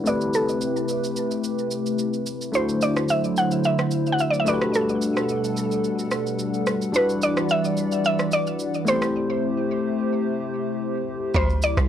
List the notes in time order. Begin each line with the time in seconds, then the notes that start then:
0.04 C3 A3 C4 E4 G4 B4 D5, shaker
0.21 shaker
0.34 A4, shaker
0.49 shaker
0.61 shaker
0.76 shaker
0.88 shaker
1.04 shaker
1.16 shaker
1.31 shaker
1.44 shaker
1.59 shaker
1.71 shaker
1.86 shaker
1.99 shaker
2.13 shaker
2.26 shaker
2.41 shaker
2.52 D3 F#3 A3 D4 E4 F#4 C5, shaker
2.69 shaker
2.81 D5, shaker
2.97 cross-stick, shaker
3.09 E5, shaker
3.24 shaker
3.37 F#5, shaker
3.51 shaker
3.64 E5, shaker
3.79 cross-stick, shaker
3.91 shaker
4.06 shaker
4.12 F#5
4.19 E5, shaker
4.30 D5, shaker
4.40 E5
4.45 B2 G3 A3 D4 F#4 G4 A4 D5 F#5, shaker
4.49 B4
4.62 cross-stick, shaker
4.74 A4, shaker
4.89 shaker
5.02 shaker
5.17 cross-stick, shaker
5.29 shaker
5.44 shaker
5.57 shaker
5.72 shaker
5.84 shaker
5.99 shaker
6.11 cross-stick, shaker
6.27 shaker
6.39 shaker
6.54 shaker
6.67 cross-stick, shaker
6.82 shaker
6.92 E3 G3 D4 E4 F#4 B4 D5, shaker
7.09 shaker
7.22 D5, shaker
7.37 cross-stick, shaker
7.49 E5, shaker
7.65 shaker
7.77 shaker
7.92 shaker
8.04 E5, shaker
8.19 cross-stick, shaker
8.32 D5, shaker
8.47 shaker
8.59 shaker
8.74 shaker
8.85 C3 A3 B3 E4 G4 C5, shaker
8.89 C4 C5
9.02 cross-stick, shaker
11.34 D2 C3 F#3 E4 C5, kick, high agogo, shaker
11.50 shaker
11.62 D5, shaker
11.77 C2, cross-stick, shaker